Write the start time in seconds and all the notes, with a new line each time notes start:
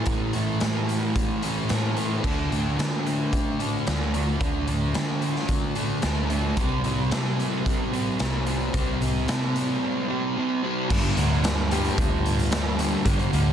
0.06 A2 E3 A3, kick, closed hi-hat
0.33 A2 E3 A3, closed hi-hat
0.60 A2 E3 A3, snare, closed hi-hat
0.89 closed hi-hat
1.16 kick, closed hi-hat
1.42 E3 A3, closed hi-hat
1.69 A2 E3 A3, snare, closed hi-hat
1.96 E3 A3, closed hi-hat
2.23 D2 D3 A3 D4, kick, crash
2.50 D2 A3 D4, closed hi-hat
2.77 D3 A3 D4, snare, closed hi-hat
3.07 closed hi-hat
3.33 kick, closed hi-hat
3.59 A3 D4, closed hi-hat
3.86 D2 D3 A3 D4, snare, closed hi-hat
4.13 A3 D4, closed hi-hat
4.40 D2 D3 A3 D4, kick, closed hi-hat
4.67 D2 A3 D4, closed hi-hat
4.94 D3 A3 D4, snare, closed hi-hat
5.22 closed hi-hat
5.36 snare
5.48 kick, closed hi-hat
5.75 A3 D4, closed hi-hat
6.02 D2 D3 A3 D4, snare, closed hi-hat
6.30 A3 D4, closed hi-hat
6.56 C2 C3 G3 C4, kick, closed hi-hat
6.84 C2 G3 C4, closed hi-hat
7.11 C3 G3 C4, snare, closed hi-hat
7.40 closed hi-hat
7.66 kick, closed hi-hat
7.92 G3 C4, closed hi-hat
8.19 C2 C3 G3 C4, snare, closed hi-hat
8.46 G3 C4, closed hi-hat
8.74 C2 C3 G3 C4, kick, closed hi-hat
9.01 C2 G3 C4, closed hi-hat
9.27 C3 G3 C4, snare, closed hi-hat
9.56 closed hi-hat
10.08 G3 C4
10.37 C3 G3 C4
10.63 G3 C4
10.89 G2 D3 G3, kick, crash
11.17 D2 D3 G3, closed hi-hat
11.44 G2 D3 G3, snare, closed hi-hat
11.71 D3 G3, closed hi-hat
11.85 closed hi-hat
11.98 D2, kick, closed hi-hat
12.26 closed hi-hat
12.39 closed hi-hat
12.52 G2 D3 G3, snare, closed hi-hat
12.78 D3 G3, closed hi-hat
13.05 G2 D3 G3, kick, closed hi-hat
13.19 closed hi-hat
13.32 D2 D3 G3, closed hi-hat